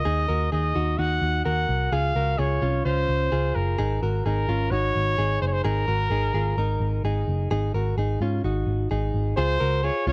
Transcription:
0.00 0.49 D#5 medium
0.05 0.25 D#2 medium
0.05 0.29 D#4 medium
0.05 0.28 G#4 medium
0.28 0.48 D#2 medium
0.28 0.52 F#4 medium
0.28 0.52 A#4 medium
0.52 0.72 D#2 medium
0.52 0.75 D#4 medium
0.52 0.75 G#4 medium
0.52 1.00 D#5 loud
0.75 0.95 D#2 medium
0.75 0.98 D#4 medium
0.75 0.97 F#4 medium
0.98 1.18 D#2 medium
0.98 1.43 D#4 medium
0.98 1.43 F#4 medium
0.98 1.44 F#5 loud
1.22 1.41 D#2 medium
1.45 1.65 D#2 medium
1.45 1.90 F#4 medium
1.45 1.89 A#4 medium
1.45 1.94 F#5 medium
1.69 1.88 C2 medium
1.92 2.11 C#2 medium
1.92 2.16 F4 medium
1.92 2.16 G#4 loud
1.92 2.40 F5 loud
2.15 2.35 C#2 medium
2.15 2.39 F#4 medium
2.15 2.38 A#4 medium
2.38 2.58 C#2 medium
2.38 2.61 F4 medium
2.38 2.62 G#4 medium
2.38 2.85 C#5 medium
2.62 2.81 C2 medium
2.62 2.85 C#4 medium
2.62 2.84 F4 medium
2.85 3.05 C#2 loud
2.85 3.30 C#4 medium
2.85 3.29 F4 medium
2.85 3.57 C5 loud
3.09 3.28 C#2 medium
3.32 3.51 C#2 medium
3.32 3.76 F4 medium
3.32 3.76 G#4 medium
3.55 3.75 F#1 medium
3.55 4.02 A#4 medium
3.78 3.98 G#1 loud
3.78 4.02 D#4 medium
3.78 4.02 G#4 medium
4.02 4.21 G#1 medium
4.02 4.26 F#4 medium
4.02 4.25 A#4 medium
4.25 4.45 G#1 loud
4.25 4.48 D#4 medium
4.25 4.49 G#4 medium
4.25 4.73 A#4 medium
4.48 4.68 G#1 medium
4.48 4.72 C#4 medium
4.48 4.71 F4 medium
4.71 4.91 G#1 loud
4.71 5.16 D#4 medium
4.71 5.16 F#4 medium
4.71 5.41 C#5 loud
4.96 5.15 G#1 medium
5.18 5.37 G#1 medium
5.18 5.63 D#4 medium
5.18 5.62 G#4 medium
5.42 5.61 F#1 medium
5.42 5.48 C5 medium
5.47 5.54 C#5 medium
5.53 5.64 C5 medium
5.64 5.84 G#1 loud
5.64 5.88 D#4 medium
5.64 5.87 G#4 loud
5.64 7.00 A#4 medium
5.88 6.07 G#1 loud
5.88 6.11 F#4 medium
5.88 6.10 A#4 medium
6.10 6.30 G#1 medium
6.10 6.35 D#4 medium
6.10 6.33 G#4 medium
6.34 6.53 G#1 medium
6.34 6.58 F4 medium
6.34 6.58 G#4 medium
6.57 6.77 G#1 medium
6.57 7.02 D#4 medium
6.57 7.02 A#4 medium
6.80 7.00 G#1 loud
7.04 7.23 G#1 medium
7.04 7.49 D#4 medium
7.04 7.48 G#4 medium
7.28 7.47 F#1 medium
7.51 7.70 G#1 loud
7.51 7.75 D#4 medium
7.51 7.74 G#4 loud
7.74 7.93 G#1 medium
7.74 7.98 F#4 medium
7.74 7.97 A#4 medium
7.97 8.16 G#1 loud
7.97 8.21 D#4 medium
7.97 8.21 G#4 medium
8.21 8.40 G#2 medium
8.21 8.45 C#4 medium
8.21 8.44 F4 medium
8.44 8.63 G#1 medium
8.44 8.88 D#4 medium
8.44 8.88 F#4 medium
8.67 8.86 G#1 medium
8.91 9.10 G#1 loud
8.91 9.35 D#4 medium
8.91 9.34 G#4 medium
9.14 9.33 G#1 medium
9.37 9.56 C#2 loud
9.37 9.61 F4 medium
9.37 9.60 G#4 loud
9.37 9.85 C5 loud
9.60 9.89 C#2 loud
9.60 9.84 F#4 medium
9.60 9.83 A#4 medium
9.84 10.06 F4 medium
9.84 10.07 G#4 medium
9.84 10.07 C#5 loud
10.07 10.12 C#2 medium
10.07 10.12 C#4 medium
10.07 10.12 F4 medium
10.07 10.12 C#5 loud

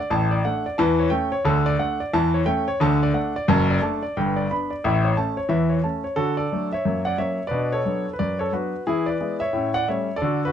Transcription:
0.00 0.12 D5 medium
0.10 0.39 A1 medium
0.10 0.40 A2 medium
0.10 0.32 A5 medium
0.31 0.46 D5 medium
0.45 0.64 A3 medium
0.45 0.63 D4 soft
0.45 0.66 F#5 medium
0.66 0.79 D5 medium
0.78 1.07 E2 loud
0.78 1.07 E3 loud
0.78 1.00 A5 medium
0.99 1.13 C#5 medium
1.10 1.30 A3 medium
1.10 1.29 C#4 medium
1.10 1.32 G5 medium
1.32 1.45 C#5 medium
1.45 1.74 D2 medium
1.45 1.74 D3 loud
1.45 1.67 A5 medium
1.66 1.80 D5 medium
1.78 1.97 A3 medium
1.78 1.98 D4 medium
1.78 2.01 F#5 medium
2.00 2.13 D5 medium
2.13 2.42 E2 loud
2.13 2.42 E3 loud
2.13 2.35 A5 medium
2.34 2.48 C#5 medium
2.46 2.65 A3 medium
2.46 2.65 C#4 medium
2.46 2.68 G5 medium
2.68 2.81 C#5 medium
2.80 3.09 D2 medium
2.80 3.09 D3 loud
2.80 3.02 A5 medium
3.03 3.16 D5 medium
3.13 3.32 A3 medium
3.13 3.32 D4 medium
3.13 3.35 F#5 medium
3.36 3.49 D5 medium
3.48 3.77 F#1 loud
3.48 3.77 F#2 loud
3.48 3.70 A5 medium
3.70 3.84 D5 medium
3.82 4.01 A3 medium
3.82 4.01 D4 medium
3.82 4.03 A5 medium
4.03 4.15 D5 medium
4.17 4.45 G1 medium
4.17 4.45 G2 medium
4.17 4.37 G5 medium
4.36 4.50 D5 medium
4.51 4.69 B3 soft
4.51 4.69 D4 soft
4.51 4.71 B5 medium
4.70 4.83 D5 medium
4.84 5.12 A1 medium
4.84 5.12 A2 medium
4.84 5.05 E5 medium
5.04 5.18 C#5 medium
5.17 5.35 A3 soft
5.17 5.36 C#4 soft
5.17 5.38 A5 medium
5.37 5.51 C#5 medium
5.49 5.78 E2 medium
5.49 5.78 E3 medium
5.49 5.71 E5 medium
5.69 5.84 C#5 medium
5.84 6.03 A3 soft
5.84 6.03 C#4 soft
5.84 6.05 A5 medium
6.04 6.17 C#5 medium
6.16 6.46 D3 medium
6.16 6.36 F#4 medium
6.16 6.34 A4 medium
6.37 6.70 A4 medium
6.37 6.66 D5 medium
6.52 6.70 F#3 soft
6.52 6.71 A3 soft
6.52 6.71 D4 soft
6.73 7.04 C#5 medium
6.73 7.01 E5 medium
6.85 7.14 F#2 medium
6.85 7.05 A#3 soft
7.05 7.18 D5 medium
7.05 7.16 F#5 medium
7.18 7.37 F#3 soft
7.18 7.37 A#3 soft
7.18 7.38 C#4 soft
7.18 7.44 C#5 medium
7.18 7.42 E5 medium
7.47 7.80 B2 medium
7.47 7.72 B4 medium
7.47 7.70 D5 medium
7.53 7.72 D4 soft
7.72 8.11 A4 medium
7.72 8.07 C#5 medium
7.85 8.04 F#3 soft
7.85 8.04 B3 soft
7.85 8.04 D4 soft
8.13 8.19 B4 medium
8.19 8.48 F#2 medium
8.19 8.40 B4 medium
8.19 8.37 D5 medium
8.39 8.53 A4 medium
8.39 8.51 C#5 medium
8.52 8.71 F#3 soft
8.52 8.71 B3 soft
8.52 8.72 D4 soft
8.52 8.85 F#4 medium
8.52 8.82 B4 medium
8.87 9.16 E3 medium
8.87 9.07 E4 medium
8.87 9.05 G#4 medium
9.06 9.40 B4 medium
9.06 9.36 D5 medium
9.21 9.39 G#3 soft
9.21 9.39 B3 soft
9.21 9.40 E4 soft
9.40 9.73 C#5 medium
9.40 9.69 E5 medium
9.53 9.82 A2 medium
9.53 9.74 C#4 soft
9.74 9.88 D5 medium
9.74 9.86 F#5 medium
9.88 10.07 G3 soft
9.88 10.07 A3 soft
9.88 10.07 C#4 soft
9.88 10.15 C#5 medium
9.88 10.11 E5 medium
10.16 10.42 A4 medium
10.16 10.39 D5 medium
10.22 10.51 D3 medium
10.22 10.42 F#4 medium
10.45 10.52 F#4 medium
10.45 10.52 B4 medium

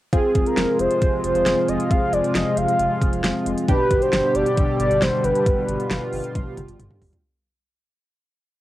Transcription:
0.13 0.21 F1 loud
0.13 3.65 C3 medium
0.13 3.65 F3 medium
0.13 3.65 G#3 medium
0.13 3.64 C4 medium
0.13 3.64 F4 medium
0.13 3.65 F4 medium
0.13 3.64 G#4 medium
0.13 0.44 G#4 medium
0.13 kick loud
0.13 closed hi-hat medium
0.35 0.43 F1 loud
0.35 kick medium
0.35 closed hi-hat medium
0.46 0.77 A#4 medium
0.46 closed hi-hat soft
0.57 0.65 F1 loud
0.57 snare loud
0.57 closed hi-hat medium
0.79 0.88 F1 loud
0.79 1.21 C5 loud
0.79 closed hi-hat medium
0.91 closed hi-hat medium
1.02 1.10 F1 loud
1.02 kick medium
1.02 closed hi-hat medium
1.24 1.32 F1 loud
1.24 1.70 C5 loud
1.24 closed hi-hat medium
1.35 1.43 F1 loud
1.35 closed hi-hat soft
1.46 1.54 F1 loud
1.46 snare loud
1.46 closed hi-hat medium
1.68 1.77 F1 medium
1.68 1.92 D#5 loud
1.68 closed hi-hat medium
1.80 closed hi-hat medium
1.91 1.99 F1 loud
1.91 2.15 F5 loud
1.91 kick loud
1.91 closed hi-hat medium
2.13 2.21 F1 loud
2.13 2.37 D5 loud
2.13 closed hi-hat medium
2.24 closed hi-hat soft
2.35 2.43 F1 loud
2.35 2.59 D#5 loud
2.35 snare loud
2.35 closed hi-hat medium
2.57 2.65 F1 loud
2.57 3.46 F5 loud
2.57 closed hi-hat medium
2.68 closed hi-hat medium
2.79 2.87 F1 loud
2.79 closed hi-hat medium
3.02 3.10 F1 loud
3.02 kick medium
3.02 closed hi-hat medium
3.13 3.21 F1 medium
3.13 closed hi-hat soft
3.24 3.32 F1 loud
3.24 snare loud
3.24 closed hi-hat medium
3.46 3.54 F1 loud
3.46 closed hi-hat medium
3.58 closed hi-hat medium
3.68 3.76 G1 loud
3.68 7.20 B2 medium
3.68 7.20 D3 medium
3.68 7.20 G3 medium
3.68 7.20 D4 medium
3.68 5.44 G4 medium
3.68 7.20 G4 medium
3.68 4.03 B4 loud
3.68 kick loud
3.68 closed hi-hat medium
3.91 3.99 G1 loud
3.91 kick medium
3.91 closed hi-hat medium
4.02 4.37 C5 loud
4.02 closed hi-hat soft
4.13 4.21 G1 loud
4.13 snare loud
4.13 closed hi-hat medium
4.35 4.43 G1 loud
4.35 4.79 D5 loud
4.35 closed hi-hat medium
4.46 closed hi-hat medium
4.57 4.65 G1 loud
4.57 kick medium
4.57 closed hi-hat medium
4.80 4.88 G1 loud
4.80 5.04 D5 loud
4.80 closed hi-hat medium
4.91 4.99 G1 loud
4.91 closed hi-hat soft
5.02 5.10 G1 loud
5.02 5.26 C5 loud
5.02 snare loud
5.02 closed hi-hat medium
5.24 5.32 G1 loud
5.24 6.80 B4 loud
5.24 closed hi-hat medium
5.35 closed hi-hat medium
5.46 5.54 G1 loud
5.46 7.22 F4 medium
5.46 kick loud
5.46 closed hi-hat medium
5.68 5.76 G1 loud
5.68 closed hi-hat medium
5.80 closed hi-hat soft
5.90 5.99 G1 loud
5.90 snare loud
5.90 closed hi-hat medium
6.13 6.21 G1 loud
6.13 open hi-hat medium
6.24 closed hi-hat medium
6.35 6.43 G1 loud
6.35 kick medium
6.35 closed hi-hat medium
6.35 high tom medium
6.57 6.65 G1 loud
6.57 closed hi-hat medium
6.57 mid tom medium
6.68 6.76 G1 loud
6.68 closed hi-hat soft
6.79 6.88 G1 loud
6.79 closed hi-hat medium
6.79 mid tom medium
6.91 mid tom medium
7.02 7.10 G1 loud
7.02 floor tom loud
7.02 open hi-hat medium
7.13 closed hi-hat medium
7.13 floor tom medium

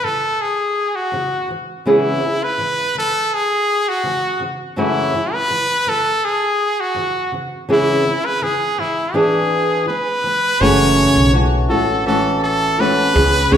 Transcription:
0.03 0.32 F#2 soft
0.03 0.33 C#3 soft
0.03 0.33 E3 soft
0.03 0.43 A4 medium
0.41 0.97 G#4 medium
0.95 1.50 F#4 medium
1.12 1.42 F#2 medium
1.12 1.42 C#3 medium
1.12 1.43 E3 medium
1.48 1.78 C#3 soft
1.48 1.79 E3 soft
1.86 2.20 C#3 medium
1.86 2.23 E3 medium
1.86 2.23 B3 medium
1.86 2.23 C#4 medium
1.86 2.45 E4 medium
1.86 2.23 G#4 medium
2.21 2.51 C#3 soft
2.21 2.52 E3 soft
2.43 2.97 B4 loud
2.58 2.88 C#3 medium
2.58 2.89 E3 medium
2.95 3.24 C#3 soft
2.95 3.25 E3 soft
2.95 3.36 A4 medium
3.34 3.90 G#4 medium
3.89 4.42 F#4 medium
4.04 4.33 C#3 medium
4.04 4.35 E3 medium
4.40 4.70 C#3 soft
4.40 4.71 E3 soft
4.76 5.11 F#2 medium
4.76 5.13 C#3 medium
4.76 5.14 E3 medium
4.76 5.14 A3 medium
4.76 5.14 C#4 medium
4.76 5.35 E4 medium
4.76 5.14 F#4 medium
5.12 5.43 F#2 soft
5.12 5.43 C#3 soft
5.12 5.44 E3 medium
5.33 5.90 B4 loud
5.49 5.79 F#2 medium
5.49 5.80 C#3 medium
5.49 5.80 E3 medium
5.86 6.16 F#2 soft
5.86 6.16 C#3 soft
5.86 6.17 E3 soft
5.86 6.26 A4 medium
6.25 6.82 G#4 medium
6.80 7.34 F#4 medium
6.95 7.25 F#2 soft
6.95 7.25 C#3 medium
6.95 7.26 E3 medium
7.32 7.62 C#3 soft
7.32 7.63 E3 soft
7.69 8.04 C#3 medium
7.69 8.06 E3 medium
7.69 8.06 B3 medium
7.69 8.06 C#4 medium
7.69 8.27 E4 medium
7.69 8.06 G#4 medium
8.05 8.35 C#3 soft
8.05 8.36 E3 medium
8.25 8.45 B4 medium
8.42 8.71 C#3 medium
8.42 8.72 E3 medium
8.42 8.81 G#4 medium
8.78 9.08 C#3 soft
8.78 9.09 E3 soft
8.78 9.16 E4 medium
9.14 9.87 E3 medium
9.14 9.88 B3 medium
9.14 9.88 D4 medium
9.14 9.87 G#4 medium
9.14 9.88 G#4 medium
9.87 10.17 E3 medium
9.87 10.18 B3 medium
9.87 10.63 B4 medium
10.24 10.53 E3 soft
10.24 10.54 B3 medium
10.60 11.06 F#1 loud
10.60 11.33 F#2 medium
10.60 11.34 C#3 medium
10.60 11.32 E3 medium
10.60 11.32 A3 medium
10.60 11.34 C#4 medium
10.60 11.34 F#4 medium
10.60 11.34 C#5 loud
11.16 11.70 B1 medium
11.33 11.70 E3 medium
11.33 11.70 A3 medium
11.33 11.69 C#4 medium
11.33 11.68 F#4 medium
11.69 13.12 A1 medium
11.69 12.04 E3 soft
11.69 12.06 A3 soft
11.69 12.07 C#4 soft
11.69 12.06 F#4 medium
11.69 12.04 A4 medium
12.06 12.78 E3 medium
12.06 12.78 A3 medium
12.06 12.80 C#4 medium
12.06 12.80 F#4 medium
12.06 12.41 A4 medium
12.43 12.82 A4 medium
12.79 13.15 E3 medium
12.79 13.16 A3 medium
12.79 13.14 C#4 medium
12.79 13.14 F#4 medium
12.79 13.55 B4 loud
13.14 13.46 C#2 loud
13.14 13.50 B3 soft
13.14 13.51 C#4 soft
13.14 13.51 G#4 medium
13.51 13.57 C#2 loud
13.51 13.57 C#3 medium
13.51 13.57 E3 medium
13.51 13.57 B3 medium
13.51 13.57 C#4 medium
13.51 13.57 G#4 medium
13.51 13.57 C#5 loud

